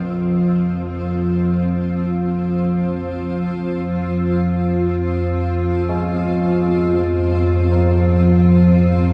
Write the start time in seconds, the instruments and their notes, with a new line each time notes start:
Already playing: synth drone F2 F3, ambient pad F3 C4 F4
0.00 church bells A#2
5.89 church bells G#3
7.72 church bells F3